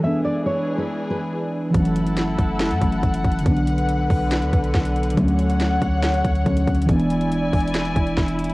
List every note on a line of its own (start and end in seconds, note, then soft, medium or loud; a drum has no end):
0.00 1.69 E3 medium
0.00 1.73 E3 medium
0.00 1.70 G#3 medium
0.00 1.73 D4 medium
0.00 1.73 G#4 medium
0.00 0.20 E5 medium
0.04 1.72 B3 medium
0.04 1.73 D4 medium
0.24 0.41 D5 medium
0.46 0.76 C#5 medium
0.78 0.87 B4 medium
1.10 1.71 B4 medium
1.70 2.77 E3 medium
1.70 2.79 F#3 medium
1.75 2.36 F#1 loud
1.75 2.80 A3 medium
1.75 2.81 C#4 medium
1.75 3.44 E4 medium
1.75 3.44 A4 medium
1.75 5.14 F#5 medium
1.75 kick loud
1.75 closed hi-hat medium
1.85 closed hi-hat medium
1.96 closed hi-hat medium
2.07 closed hi-hat medium
2.17 snare medium
2.17 closed hi-hat medium
2.39 2.72 F#1 loud
2.39 kick medium
2.39 closed hi-hat medium
2.60 snare loud
2.60 closed hi-hat medium
2.71 2.81 F#2 loud
2.71 closed hi-hat medium
2.79 3.02 F#1 loud
2.79 3.45 E3 medium
2.79 3.43 F#3 medium
2.79 3.46 A3 medium
2.79 kick loud
2.79 closed hi-hat medium
2.83 3.47 C#4 medium
2.92 closed hi-hat medium
3.03 3.24 F#1 loud
3.03 kick loud
3.03 closed hi-hat medium
3.14 closed hi-hat medium
3.25 3.45 F#1 loud
3.25 kick loud
3.25 closed hi-hat soft
3.32 closed hi-hat medium
3.39 5.11 D3 medium
3.39 closed hi-hat medium
3.44 4.08 B1 loud
3.44 6.85 D3 medium
3.44 5.13 F#3 medium
3.44 5.14 B3 medium
3.44 5.16 B4 medium
3.44 kick loud
3.44 closed hi-hat medium
3.49 5.16 D4 medium
3.57 closed hi-hat medium
3.67 closed hi-hat medium
3.78 closed hi-hat medium
3.89 closed hi-hat medium
4.10 4.44 B1 loud
4.10 kick medium
4.10 open hi-hat medium
4.32 snare loud
4.32 closed hi-hat medium
4.42 4.52 D2 loud
4.42 closed hi-hat medium
4.53 4.74 B1 loud
4.53 kick loud
4.53 closed hi-hat medium
4.64 closed hi-hat medium
4.75 5.16 B1 loud
4.75 kick medium
4.75 snare loud
4.75 closed hi-hat medium
4.85 closed hi-hat medium
4.96 closed hi-hat soft
5.03 closed hi-hat medium
5.10 6.41 D3 medium
5.10 closed hi-hat medium
5.16 5.79 D2 loud
5.16 6.43 F#3 medium
5.16 6.44 A3 medium
5.16 6.87 C#5 medium
5.16 6.87 F#5 medium
5.16 kick loud
5.16 closed hi-hat medium
5.22 6.46 C#4 medium
5.28 closed hi-hat medium
5.39 closed hi-hat medium
5.50 closed hi-hat medium
5.60 snare medium
5.60 closed hi-hat medium
5.82 6.23 D2 loud
5.82 kick loud
5.82 closed hi-hat medium
6.03 snare loud
6.03 closed hi-hat medium
6.14 closed hi-hat medium
6.25 6.45 D2 loud
6.25 kick loud
6.25 closed hi-hat medium
6.35 closed hi-hat medium
6.43 6.67 D2 loud
6.43 6.87 D3 medium
6.43 6.88 F#3 medium
6.43 6.89 A3 medium
6.43 kick loud
6.43 closed hi-hat medium
6.47 6.89 C#4 medium
6.57 closed hi-hat medium
6.67 6.88 D2 loud
6.67 kick loud
6.67 closed hi-hat soft
6.75 closed hi-hat medium
6.82 8.54 E3 medium
6.82 closed hi-hat medium
6.88 7.50 E1 loud
6.88 8.54 G#3 medium
6.88 8.54 B3 medium
6.88 8.54 E4 medium
6.88 8.54 D5 medium
6.88 8.54 G#5 medium
6.88 kick loud
6.88 closed hi-hat medium
6.93 8.54 D4 medium
7.00 closed hi-hat medium
7.10 closed hi-hat medium
7.21 closed hi-hat medium
7.32 closed hi-hat medium
7.53 7.94 E1 loud
7.53 kick loud
7.53 closed hi-hat medium
7.53 open hi-hat medium
7.60 closed hi-hat medium
7.67 closed hi-hat medium
7.75 snare loud
7.75 closed hi-hat medium
7.85 closed hi-hat medium
7.96 8.16 E1 loud
7.96 kick medium
7.96 closed hi-hat medium
8.07 closed hi-hat soft
8.17 8.54 E1 loud
8.17 kick medium
8.17 snare loud
8.17 closed hi-hat medium
8.28 closed hi-hat medium
8.39 closed hi-hat medium
8.44 closed hi-hat medium
8.50 closed hi-hat medium